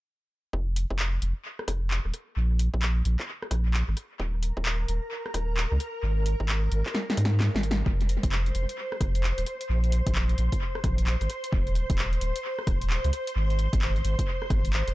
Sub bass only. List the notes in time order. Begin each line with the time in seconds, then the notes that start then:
0.53 F1
0.91 F1
1.22 F1
1.68 F1
2.05 D#1
2.37 A#1
2.74 A#1
3.05 A#1
3.51 A#1
3.88 G#1
4.20 D#1
4.57 D#1
4.88 D#1
5.34 D#1
5.71 C#2
6.03 G#1
6.40 G#1
6.72 G#1
7.17 G#2
7.55 G#1
7.86 F1
8.23 F1
8.55 F1
9.01 F1
9.38 D#1
9.69 A#1
10.07 A#1
10.38 A#1
10.84 A#1
11.21 G#1
11.53 D#1
11.90 D#1
12.21 D#1
12.67 D#1
13.04 C#2
13.36 G#1
13.73 G#1
14.04 G#1
14.50 G#1
14.87 F1